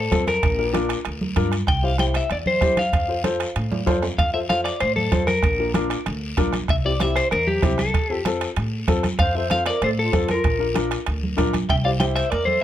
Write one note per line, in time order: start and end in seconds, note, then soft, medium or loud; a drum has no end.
0.00 0.27 A4 medium
0.11 0.37 F2 medium
0.11 0.28 C4 medium
0.11 0.28 F4 medium
0.11 0.28 A4 medium
0.11 bombo low medium
0.11 bombo rim medium
0.11 high conga medium
0.11 high timbale medium
0.11 low timbale medium
0.11 short guiro medium
0.27 0.71 A#4 medium
0.27 bombo rim medium
0.27 high conga medium
0.27 high timbale medium
0.27 short guiro medium
0.43 0.93 A#1 medium
0.43 bombo low medium
0.43 bombo rim medium
0.43 high timbale medium
0.43 long guiro medium
0.58 0.64 D4 medium
0.58 0.64 F4 medium
0.58 0.64 A#4 medium
0.73 0.95 D4 medium
0.73 0.96 F4 medium
0.73 0.96 A#4 medium
0.73 bombo rim medium
0.73 high conga medium
0.73 high timbale medium
0.73 short guiro medium
0.89 bombo rim medium
0.89 high timbale medium
0.89 short guiro medium
1.05 1.31 D2 medium
1.05 bombo rim medium
1.05 high conga soft
1.05 high timbale medium
1.05 long guiro medium
1.21 high conga medium
1.36 1.62 G2 medium
1.36 1.53 D4 medium
1.36 1.53 F4 medium
1.36 1.53 A#4 medium
1.36 bombo low medium
1.36 bombo rim medium
1.36 high conga medium
1.36 high timbale medium
1.36 low timbale medium
1.36 short guiro medium
1.52 bombo rim medium
1.52 high timbale medium
1.52 short guiro medium
1.67 2.18 C2 medium
1.67 1.84 G5 loud
1.67 bombo low medium
1.67 bombo rim medium
1.67 high conga soft
1.67 high timbale medium
1.67 long guiro medium
1.83 1.89 E4 medium
1.83 1.89 G4 medium
1.83 1.89 C5 medium
1.83 2.00 F5 loud
1.98 2.21 E4 medium
1.98 2.21 G4 medium
1.98 2.21 C5 medium
1.98 2.05 G5 medium
1.98 bombo rim medium
1.98 high conga medium
1.98 high timbale medium
1.98 short guiro medium
2.14 2.30 E5 medium
2.14 bombo rim medium
2.14 high timbale medium
2.14 short guiro medium
2.30 2.56 E2 medium
2.30 2.37 D5 medium
2.30 bombo rim medium
2.30 high conga soft
2.30 high timbale medium
2.30 long guiro medium
2.46 2.79 C5 medium
2.46 high conga medium
2.61 2.87 E2 medium
2.61 2.78 E4 medium
2.61 2.78 G4 medium
2.61 2.78 C5 medium
2.61 bombo low medium
2.61 bombo rim medium
2.61 high conga medium
2.61 high timbale medium
2.61 low timbale medium
2.61 short guiro medium
2.77 3.22 F5 medium
2.77 bombo rim medium
2.77 high conga medium
2.77 high timbale medium
2.77 short guiro medium
2.93 3.43 F2 medium
2.93 bombo low medium
2.93 bombo rim medium
2.93 high conga soft
2.93 high timbale medium
2.93 long guiro medium
3.08 3.14 F4 medium
3.08 3.14 A4 medium
3.08 3.14 C5 medium
3.24 3.46 F4 medium
3.24 3.46 A4 medium
3.24 3.46 C5 medium
3.24 bombo rim medium
3.24 high conga medium
3.24 high timbale medium
3.24 short guiro medium
3.40 bombo rim medium
3.40 high timbale medium
3.40 short guiro medium
3.56 3.81 A2 medium
3.56 bombo rim medium
3.56 high conga soft
3.56 high timbale medium
3.56 long guiro medium
3.72 high conga medium
3.72 high timbale medium
3.86 4.12 F2 medium
3.86 4.03 F4 medium
3.86 4.03 A4 medium
3.86 4.03 C5 medium
3.86 bombo low medium
3.86 bombo rim medium
3.86 high conga medium
3.86 high timbale medium
3.86 short guiro medium
4.03 bombo rim medium
4.03 low timbale medium
4.03 short guiro medium
4.18 4.68 F2 loud
4.18 4.33 F5 medium
4.18 bombo low medium
4.18 bombo rim medium
4.18 high conga soft
4.18 high timbale medium
4.18 long guiro medium
4.34 4.39 F4 medium
4.34 4.40 A4 medium
4.34 4.40 C5 medium
4.34 4.39 E5 medium
4.49 4.71 F4 medium
4.49 4.72 A4 medium
4.49 4.72 C5 medium
4.49 4.64 F5 medium
4.49 bombo rim medium
4.49 high conga medium
4.49 high timbale medium
4.49 short guiro medium
4.64 4.81 D5 medium
4.64 bombo rim medium
4.64 high timbale medium
4.64 short guiro medium
4.80 5.06 A2 medium
4.80 4.96 C5 medium
4.80 bombo rim medium
4.80 high conga soft
4.80 high timbale medium
4.80 long guiro medium
4.96 5.27 A4 medium
4.96 high conga medium
5.12 5.37 F2 medium
5.12 5.28 F4 medium
5.12 5.28 A4 medium
5.12 5.29 C5 medium
5.12 bombo low medium
5.12 bombo rim medium
5.12 high conga medium
5.12 high timbale medium
5.12 low timbale medium
5.12 short guiro medium
5.27 5.71 A#4 medium
5.27 bombo rim medium
5.27 high conga medium
5.27 high timbale medium
5.27 short guiro medium
5.43 5.93 A#1 medium
5.43 bombo low medium
5.43 bombo rim medium
5.43 high timbale medium
5.43 long guiro medium
5.59 5.65 D4 medium
5.59 5.65 F4 medium
5.59 5.65 A#4 medium
5.74 5.96 D4 medium
5.74 5.97 F4 medium
5.74 5.97 A#4 medium
5.74 bombo rim medium
5.74 high conga medium
5.74 high timbale medium
5.74 short guiro medium
5.90 bombo rim medium
5.90 high timbale medium
5.90 short guiro medium
6.06 6.32 D2 loud
6.06 bombo rim medium
6.06 high conga soft
6.06 high timbale medium
6.06 long guiro medium
6.37 6.63 A#1 medium
6.37 6.54 D4 medium
6.37 6.54 F4 medium
6.37 6.54 A#4 medium
6.37 bombo low medium
6.37 bombo rim medium
6.37 high conga medium
6.37 high timbale medium
6.37 short guiro medium
6.53 bombo rim medium
6.53 high conga medium
6.53 high timbale medium
6.53 short guiro medium
6.68 7.19 C2 medium
6.68 6.75 E5 medium
6.68 bombo low medium
6.68 bombo rim medium
6.68 high conga soft
6.68 high timbale medium
6.68 long guiro medium
6.85 6.90 C4 medium
6.85 6.90 E4 medium
6.85 6.90 G4 medium
6.85 7.01 D5 medium
7.00 7.22 C4 medium
7.00 7.23 E4 medium
7.00 7.23 G4 medium
7.00 7.17 E5 medium
7.00 bombo rim medium
7.00 high conga medium
7.00 high timbale medium
7.00 short guiro medium
7.16 7.31 C5 medium
7.16 bombo rim medium
7.16 high timbale medium
7.16 short guiro medium
7.31 7.57 E2 medium
7.31 7.48 A#4 medium
7.31 bombo rim medium
7.31 high conga soft
7.31 high timbale medium
7.31 long guiro medium
7.47 7.79 G4 medium
7.47 high conga medium
7.62 7.88 C2 medium
7.62 7.79 C4 medium
7.62 7.79 E4 medium
7.62 7.79 G4 medium
7.62 bombo low medium
7.62 bombo rim medium
7.62 high conga medium
7.62 high timbale medium
7.62 low timbale medium
7.62 short guiro medium
7.78 8.22 A4 medium
7.78 bombo rim medium
7.78 high conga medium
7.78 high timbale medium
7.78 short guiro medium
7.94 8.44 F2 medium
7.94 bombo low medium
7.94 bombo rim medium
7.94 high conga soft
7.94 high timbale medium
7.94 long guiro medium
8.10 8.15 C4 medium
8.10 8.15 F4 medium
8.10 8.16 A4 medium
8.25 8.47 C4 medium
8.25 8.48 F4 medium
8.25 8.48 A4 medium
8.25 bombo rim medium
8.25 high conga medium
8.25 high timbale medium
8.25 short guiro medium
8.41 bombo rim medium
8.41 high timbale medium
8.41 short guiro medium
8.56 8.82 A2 medium
8.56 bombo rim medium
8.56 high conga soft
8.56 high timbale medium
8.56 long guiro medium
8.88 9.13 F2 medium
8.88 9.04 C4 medium
8.88 9.04 F4 medium
8.88 9.05 A4 loud
8.88 bombo low medium
8.88 bombo rim medium
8.88 high conga medium
8.88 high timbale medium
8.88 low timbale medium
8.88 short guiro medium
9.03 bombo rim medium
9.03 high conga medium
9.03 high timbale medium
9.03 short guiro medium
9.19 9.69 F2 medium
9.19 9.37 C5 medium
9.19 9.35 F5 medium
9.19 bombo low medium
9.19 bombo rim medium
9.19 high conga soft
9.19 high timbale medium
9.19 long guiro medium
9.35 9.40 C4 medium
9.35 9.40 F4 medium
9.35 9.41 A4 medium
9.35 9.52 C5 medium
9.35 9.51 E5 medium
9.50 9.72 C4 medium
9.50 9.72 F4 medium
9.50 9.72 A4 medium
9.50 9.66 C5 medium
9.50 9.65 F5 medium
9.50 bombo rim medium
9.50 high conga medium
9.50 high timbale medium
9.50 short guiro medium
9.66 9.82 A#4 medium
9.66 9.81 D5 medium
9.66 bombo rim medium
9.66 high timbale medium
9.66 short guiro medium
9.82 10.07 A2 medium
9.82 9.92 A4 medium
9.82 9.89 C5 medium
9.82 bombo rim medium
9.82 high conga soft
9.82 high timbale medium
9.82 long guiro medium
9.99 10.28 F4 medium
9.99 10.30 A4 medium
10.12 10.38 F2 medium
10.12 10.29 C4 medium
10.12 10.29 F4 medium
10.12 10.30 A4 medium
10.12 bombo low medium
10.12 bombo rim medium
10.12 high conga medium
10.12 high timbale medium
10.12 low timbale medium
10.12 short guiro medium
10.28 10.74 F4 medium
10.28 10.73 A#4 medium
10.28 bombo rim medium
10.28 high conga medium
10.28 high timbale medium
10.28 short guiro medium
10.44 10.94 A#1 medium
10.44 bombo low medium
10.44 bombo rim medium
10.44 high timbale medium
10.44 long guiro medium
10.59 10.65 D4 medium
10.59 10.65 F4 medium
10.59 10.65 A#4 medium
10.74 10.97 D4 medium
10.74 10.97 F4 medium
10.74 10.97 A#4 medium
10.74 bombo rim medium
10.74 high conga medium
10.74 high timbale medium
10.74 short guiro medium
10.91 bombo rim medium
10.91 high timbale medium
10.91 short guiro medium
11.06 11.32 D2 medium
11.06 bombo rim medium
11.06 high conga soft
11.06 high timbale medium
11.06 long guiro medium
11.23 high conga medium
11.37 11.63 A#1 medium
11.37 11.54 D4 medium
11.37 11.54 F4 medium
11.37 11.54 A#4 loud
11.37 bombo low medium
11.37 bombo rim medium
11.37 high conga medium
11.37 high timbale medium
11.37 low timbale medium
11.37 short guiro medium
11.53 bombo rim medium
11.53 high conga medium
11.53 high timbale medium
11.53 short guiro medium
11.69 12.19 C2 medium
11.69 11.76 E5 medium
11.69 11.75 G5 loud
11.69 bombo low medium
11.69 bombo rim medium
11.69 high timbale medium
11.69 long guiro medium
11.84 11.90 E4 medium
11.84 11.91 G4 medium
11.84 11.91 C5 medium
11.84 11.91 D5 medium
11.84 11.90 F5 loud
12.00 12.22 E4 medium
12.00 12.22 G4 medium
12.00 12.22 C5 medium
12.00 12.16 E5 medium
12.00 12.05 G5 loud
12.00 bombo rim medium
12.00 high conga medium
12.00 high timbale medium
12.00 short guiro medium
12.15 12.32 C5 medium
12.15 12.30 E5 medium
12.15 bombo rim medium
12.15 high timbale medium
12.15 short guiro medium
12.30 12.57 E2 medium
12.30 12.46 A#4 medium
12.30 12.47 D5 medium
12.30 bombo rim medium
12.30 high conga soft
12.30 high timbale medium
12.30 long guiro medium
12.45 12.61 A4 medium
12.45 12.61 C5 medium
12.45 high conga medium